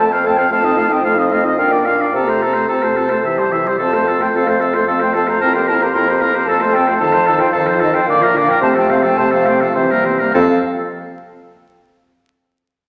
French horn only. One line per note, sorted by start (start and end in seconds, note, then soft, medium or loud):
0.00 0.13 A3 soft
0.12 0.27 C4 soft
0.25 0.39 A3 soft
0.37 0.49 C4 medium
0.49 0.65 A3 medium
0.64 0.78 C4 medium
0.77 0.91 A3 medium
0.89 1.03 C4 soft
1.03 1.18 A3 medium
1.17 1.32 C4 soft
1.30 1.45 A3 soft
1.44 1.56 C4 soft
1.57 1.72 D4 soft
1.71 1.87 A#3 soft
1.85 2.01 D4 soft
2.00 2.13 A#3 soft
2.14 2.29 C4 soft
2.28 2.44 A3 soft
2.43 2.57 C4 soft
2.55 2.69 A3 soft
2.69 2.84 C4 soft
2.83 2.98 A3 soft
2.96 3.11 C4 soft
3.09 3.23 A3 soft
3.24 3.39 E3 soft
3.37 3.54 G3 soft
3.53 3.68 E3 soft
3.66 3.79 G3 soft
3.80 3.95 C4 soft
3.93 4.07 A3 soft
4.06 4.22 C4 soft
4.20 4.33 A3 soft
4.34 4.49 C4 soft
4.47 4.62 A3 soft
4.61 4.77 C4 soft
4.75 4.86 A3 soft
4.87 5.03 C4 soft
5.02 5.17 A3 soft
5.15 5.30 C4 soft
5.28 5.41 A3 soft
5.41 5.57 C4 soft
5.55 5.71 A#3 soft
5.69 5.84 C4 soft
5.82 5.95 A#3 soft
5.95 6.10 C4 soft
6.08 6.23 A#3 soft
6.21 6.35 C4 soft
6.34 6.47 A#3 soft
6.48 6.62 C4 soft
6.61 6.76 A3 soft
6.75 6.90 C4 soft
6.88 7.01 A3 soft
7.01 7.16 D#3 medium
7.14 7.30 F3 medium
7.28 7.43 D#3 medium
7.42 7.55 F3 medium
7.55 7.70 D#3 medium
7.68 7.84 F3 medium
7.82 7.97 D#3 medium
7.95 8.08 F3 medium
8.09 8.24 D3 medium
8.22 8.36 F3 medium
8.35 8.49 D3 medium
8.48 8.61 F3 medium
8.62 8.77 A3 medium
8.76 8.91 F3 medium
8.89 9.05 A3 medium
9.03 9.17 F3 medium
9.17 9.35 A3 medium
9.33 9.48 F3 medium
9.47 9.62 A3 medium
9.61 9.76 F3 medium
9.77 9.92 E3 medium
9.90 10.07 G3 medium
10.06 10.22 E3 soft
10.21 10.34 G3 soft
10.34 10.59 F3 medium